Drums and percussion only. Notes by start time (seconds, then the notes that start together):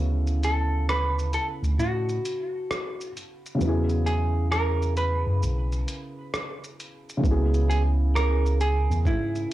0.27 shaker
0.43 closed hi-hat, shaker
0.89 cross-stick, shaker
1.19 shaker
1.33 closed hi-hat, shaker
1.64 shaker
1.80 shaker
2.09 shaker
2.25 closed hi-hat, shaker
2.71 cross-stick, shaker
3.01 shaker
3.17 closed hi-hat, shaker
3.46 shaker
3.61 shaker
3.89 shaker
4.07 closed hi-hat, shaker
4.52 cross-stick, shaker
4.82 shaker
4.97 closed hi-hat, shaker
5.43 shaker
5.72 shaker
5.88 closed hi-hat, shaker
6.34 cross-stick, shaker
6.64 shaker
6.80 closed hi-hat, shaker
7.09 shaker
7.24 kick, shaker
7.54 shaker
7.71 closed hi-hat, shaker
8.16 cross-stick, shaker
8.46 shaker
8.61 closed hi-hat, shaker
8.92 shaker
9.05 kick, shaker
9.35 shaker